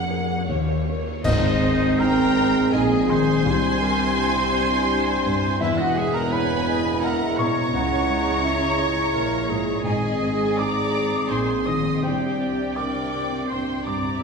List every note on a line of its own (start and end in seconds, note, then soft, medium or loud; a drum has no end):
0.00 0.48 F1 medium
0.00 0.48 F2 medium
0.00 0.51 F#2 medium
0.00 0.45 A#3 medium
0.00 0.51 C#4 soft
0.00 0.33 G#4 soft
0.00 0.45 G#4 medium
0.00 0.45 F#5 medium
0.00 0.47 F#5 medium
0.11 0.48 A#4 soft
0.48 1.02 D#2 medium
0.48 1.22 D#2 soft
0.48 1.02 D#2 medium
0.48 1.02 A#3 medium
0.48 1.02 G4 soft
0.48 1.24 C#5 medium
0.48 1.23 C#5 medium
0.88 1.21 G4 soft
0.88 1.21 A#4 soft
1.23 2.68 G#1 medium
1.23 2.32 G#2 loud
1.23 2.68 G#2 medium
1.23 3.40 G#3 medium
1.23 3.40 C4 medium
1.23 2.01 D#4 medium
1.23 1.96 D#4 loud
1.23 2.75 C5 loud
1.23 1.95 C5 medium
1.23 1.95 D#5 medium
1.23 1.96 D#5 loud
1.23 concert bass drum medium
1.23 crash medium
1.63 2.22 C4 medium
1.99 2.58 D#4 medium
1.99 2.72 A#4 loud
1.99 2.72 G5 loud
1.99 2.72 A#5 loud
1.99 2.72 A#5 medium
1.99 2.68 A#5 loud
2.37 2.94 C5 medium
2.71 3.45 A#1 medium
2.71 3.45 A#2 medium
2.71 3.30 D#4 medium
2.71 3.09 G#4 medium
2.71 3.12 G#4 medium
2.71 3.45 G#4 medium
2.71 3.08 D#5 medium
2.71 3.07 G#5 medium
2.71 3.06 G#5 medium
3.08 3.45 D#3 medium
3.08 5.57 C5 loud
3.08 5.61 C5 medium
3.08 5.60 G#5 loud
3.08 5.60 C6 loud
3.08 5.60 C6 medium
3.08 5.57 C6 loud
3.44 5.57 C2 medium
3.44 5.61 C2 medium
3.44 5.61 C3 medium
3.44 5.60 G3 medium
3.44 5.56 D4 medium
3.44 3.84 G4 medium
3.81 4.39 G3 medium
3.81 4.20 A#4 medium
4.17 4.74 D4 medium
4.17 5.63 C5 medium
4.53 5.10 C5 medium
4.89 5.46 D4 medium
5.26 5.61 G2 medium
5.60 7.73 E1 medium
5.60 7.68 E2 medium
5.60 7.72 E2 medium
5.60 9.80 G#3 medium
5.60 5.78 E4 medium
5.60 9.80 E4 medium
5.60 5.79 E4 medium
5.60 5.78 B4 medium
5.60 6.34 B4 medium
5.60 5.78 E5 medium
5.60 5.77 E5 loud
5.60 5.78 E5 medium
5.77 5.99 F#4 medium
5.77 5.96 F#4 medium
5.77 5.95 D#5 medium
5.77 5.96 F#5 medium
5.77 5.95 F#5 medium
5.95 6.52 G#3 medium
5.95 6.13 G#4 medium
5.95 6.17 G#4 medium
5.95 6.14 E5 medium
5.95 6.13 G#5 medium
6.13 6.31 A#4 medium
6.13 6.34 A#4 medium
6.13 6.31 F#5 medium
6.13 6.31 A#5 medium
6.13 6.30 A#5 medium
6.13 6.31 A#5 medium
6.30 6.87 E4 medium
6.30 7.02 B4 medium
6.30 6.87 B4 medium
6.30 6.67 C#5 medium
6.30 7.01 G#5 medium
6.30 7.02 B5 medium
6.30 6.98 B5 loud
6.68 7.24 G#4 medium
6.68 7.05 D#5 medium
7.02 7.59 E4 medium
7.02 7.37 A#4 medium
7.02 7.39 A#4 medium
7.02 7.48 E5 medium
7.02 7.37 F#5 medium
7.02 7.37 A#5 medium
7.02 7.38 A#5 medium
7.02 7.36 A#5 loud
7.37 7.72 B2 medium
7.37 9.84 C#5 loud
7.37 9.57 C#5 medium
7.37 9.85 A#5 medium
7.37 9.84 C#6 medium
7.37 9.56 C#6 loud
7.37 9.81 C#6 loud
7.73 9.10 C#2 medium
7.73 9.14 C#2 medium
7.73 9.14 C#3 medium
7.73 8.40 F#5 medium
8.08 8.64 G#3 medium
8.44 9.00 E4 medium
8.44 8.80 E5 medium
8.79 9.35 G#4 medium
8.79 9.16 C#5 medium
9.13 9.83 A#1 medium
9.13 9.83 A#2 medium
9.13 9.70 E4 medium
9.13 9.51 A#4 medium
9.49 9.82 G#2 soft
9.49 12.05 G#4 medium
9.83 11.31 G#1 medium
9.83 11.26 G#2 medium
9.83 10.90 G#2 medium
9.83 11.30 G#2 medium
9.83 14.19 C4 medium
9.83 11.87 D#4 medium
9.83 10.59 G#4 medium
9.83 10.57 G#4 medium
9.83 10.57 D#5 medium
9.83 10.56 G#5 medium
9.83 10.54 G#5 medium
9.83 10.57 G#5 medium
10.21 10.80 C4 soft
10.58 11.16 D#4 soft
10.58 11.32 D5 medium
10.58 11.31 D5 medium
10.58 11.31 A#5 medium
10.58 11.30 D6 medium
10.58 11.31 D6 medium
10.58 11.27 D6 medium
10.94 11.52 G#4 soft
11.30 12.03 A#1 medium
11.30 12.03 A#2 medium
11.30 11.88 D#4 soft
11.30 11.68 C5 medium
11.30 11.67 C5 medium
11.30 11.67 G#5 medium
11.30 11.66 C6 medium
11.30 11.64 C6 medium
11.30 11.67 C6 medium
11.66 12.03 D#3 soft
11.66 12.01 D#5 medium
11.66 12.03 D#5 medium
11.66 12.03 C6 medium
11.66 12.02 D#6 medium
11.66 12.00 D#6 medium
11.66 12.03 D#6 medium
12.02 14.18 C2 medium
12.02 14.18 C3 medium
12.02 14.19 D4 medium
12.02 12.77 G4 medium
12.02 12.76 G4 medium
12.02 12.39 C5 medium
12.02 12.76 D5 medium
12.02 12.76 G5 medium
12.02 12.73 G5 medium
12.39 12.99 C4 soft
12.39 12.78 D5 medium
12.76 13.36 D4 soft
12.76 13.52 A#4 medium
12.76 13.49 D5 medium
12.76 13.50 D5 medium
12.76 13.48 G5 medium
12.76 13.49 D6 medium
12.76 13.45 D6 medium
12.76 13.50 D6 medium
13.14 13.72 G4 soft
13.48 14.08 D4 soft
13.48 13.86 C5 medium
13.48 13.97 C5 medium
13.48 13.85 G5 medium
13.48 13.85 C6 medium
13.48 13.83 C6 medium
13.52 13.87 C6 medium
13.84 14.23 G2 soft
13.84 14.19 D5 medium
13.84 14.22 D5 medium
13.84 14.22 A#5 medium
13.84 14.21 D6 medium
13.84 14.20 D6 medium
13.84 14.23 D6 medium
14.20 14.23 E4 medium